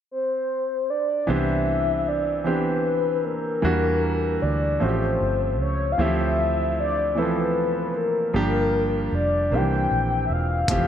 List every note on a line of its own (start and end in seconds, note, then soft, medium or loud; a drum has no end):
0.11 0.92 C5 medium
0.90 1.30 D5 medium
1.27 3.24 C2 medium
1.27 2.00 E3 medium
1.27 2.00 B3 medium
1.27 2.01 C4 medium
1.27 2.01 D4 medium
1.27 2.01 G4 medium
1.27 2.10 E5 medium
2.08 2.46 D5 medium
2.44 3.17 E3 medium
2.44 3.18 B3 soft
2.44 3.18 C4 medium
2.44 3.19 D4 medium
2.44 3.19 G4 medium
2.44 3.26 B4 medium
3.24 3.59 D#2 medium
3.24 4.44 A#4 medium
3.62 4.37 E2 medium
3.62 4.35 E3 medium
3.62 4.35 G3 medium
3.62 4.36 A#3 medium
3.62 4.36 D4 medium
3.62 4.37 F#4 medium
4.42 4.77 D2 medium
4.42 4.84 D5 medium
4.80 5.16 A1 medium
4.80 5.53 F3 soft
4.80 5.53 A3 medium
4.80 5.53 C4 soft
4.80 5.54 C#4 soft
4.80 4.88 F#4 medium
4.80 5.60 C5 medium
4.89 5.57 G4 medium
5.21 5.59 G1 medium
5.59 5.94 C#2 medium
5.59 5.94 C#5 medium
5.92 6.03 F5 medium
5.98 7.96 D2 medium
5.98 6.04 E3 medium
5.98 6.71 A3 medium
5.98 6.72 C4 medium
5.98 6.72 E4 medium
5.98 6.72 G4 medium
5.98 6.78 E5 medium
6.05 6.74 F3 medium
6.80 7.20 D5 medium
7.15 7.22 E3 soft
7.15 7.89 A3 soft
7.15 7.89 C4 soft
7.15 7.89 E4 soft
7.15 7.90 A4 medium
7.15 7.99 B4 medium
7.22 7.92 F3 medium
7.96 8.30 F#1 medium
7.96 9.13 A#4 loud
8.33 9.08 G1 medium
8.33 9.06 F3 medium
8.33 9.07 G3 medium
8.33 9.07 A#3 medium
8.33 9.07 D4 medium
8.33 9.08 G4 medium
9.12 9.53 F1 medium
9.12 9.56 D5 medium
9.51 9.86 C2 medium
9.51 9.57 D#3 soft
9.51 10.24 A#3 soft
9.51 10.24 C4 medium
9.51 10.25 D4 soft
9.51 10.25 G4 medium
9.51 10.24 G5 loud
9.58 10.27 E3 medium
9.91 10.26 A#1 medium
10.25 10.34 E5 medium
10.30 10.65 E1 medium
10.30 10.88 F5 loud
10.68 10.88 F1 medium
10.68 10.88 E3 medium
10.68 10.88 F3 medium
10.68 10.88 A3 medium
10.68 10.88 C4 medium
10.68 10.88 G4 medium
10.68 kick medium
10.68 closed hi-hat medium